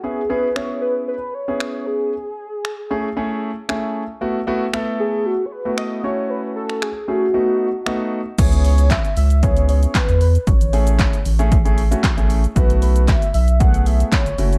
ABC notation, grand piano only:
X:1
M:4/4
L:1/16
Q:1/4=115
K:C#m
V:1 name="Grand piano"
[B,CEG] z [B,CEG] z [B,CEG]4 z3 [B,CEG]4- [B,CEG] | z6 [A,CEG] z [A,CEG]3 z [A,CEG]3 z | [A,B,EF] z [A,B,EF] z [A,B,EA]4 z3 [A,B,EF]3 [A,CEF]2- | [A,CEF]4 z2 [A,CEG] z [A,B,DF]3 z [A,B,DF]3 z |
[B,CEG]4- [B,CEG] z3 [B,CEG]4- [B,CEG] z3 | z2 [A,CEG]3 z2 [A,CEG] z [A,CEG] z [A,CEF] z [A,CEG]2 z | [A,B,EF]4- [A,B,EF] z3 [A,B,EG]4- [A,B,EG] z [A,CEF]2 |]